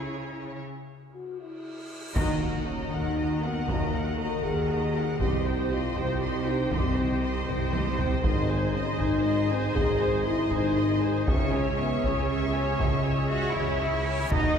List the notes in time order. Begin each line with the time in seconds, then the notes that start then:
Already playing: C#3 C#4 E4 G#4 C#5
0.64 cymbal swell
1.14 F#4
1.40 E4
2.15 D#2 D#3 D#4 F#4 A#4 D#5 A#5, taiko, impact
2.41 A#4 F#5
2.65 C#4 F#4 D#5 A#5
2.91 D#2 D#3 D#4 A#4 F#5, taiko
3.18 F#4 D#5 A#5
3.42 B3 A#4 F#5
3.67 D#2 D#3 A#3 F#4 D#5 A#5, taiko
3.93 A#4 F#5
4.17 F#4 A#4 D#5 A#5
4.43 D#2 D#3 G#4 A#4 F#5, taiko
4.69 F#4 D#5 A#5
4.95 A#4 F#5
5.20 C2 C3 G4 C5 D#5 C6, taiko
5.45 C5 G5
5.70 F4 G4 D#5 C6
5.96 C2 C3 G4 C5 G5, taiko
6.21 G4 D#5 C6
6.46 D#4 C5 G5
6.71 C2 C3 C4 G4 D#5 C6, taiko
6.96 C5 G5
7.21 G4 D#5 C6
7.46 C2 C3 C4 C5 G5, taiko low-mid
7.72 G4 D#5 C6, taiko high
7.97 C5 G5, taiko low
8.23 G#1 G#2 D#4 G#4 D#5 C6, taiko
8.48 C5 G#5
8.73 C#4 G#4 D#5 C6
8.98 G#1 G#2 D#4 C5 G#5, taiko
9.24 G#4 D#5 C6
9.49 C4 C5 G#5
9.74 G#1 G#2 G#4 D#5 C6, taiko
9.99 C5 G#5
10.24 E4 G#4 D#5 C6
10.51 G#1 G#2 D#4 C5 G#5, taiko
10.77 G#4 D#5 C6
11.01 C5 G#5
11.27 C#2 C#3 C#4 G#4 C#5 E5 C#6, taiko
11.53 C#5 G#5
11.77 B3 G#4 E5 C#6
12.04 C#2 C#3 C#4 C#5 G#5, taiko
12.30 G#4 E5 C#6
12.54 C#5 G#5
12.78 C#2 C#3 G#3 G#4 E5 C#6, taiko, reverse cymbal
13.04 C#5 G#5
13.28 F#4 G#4 E5 F#5 C#6
13.54 C#2 C#3 E4 C#5 E5 G#5, taiko
13.79 G#4 E5 C#6
14.05 C#5 G#5
14.30 D#2 D#4 F#4 A#4 D#5 A#5, taiko, impact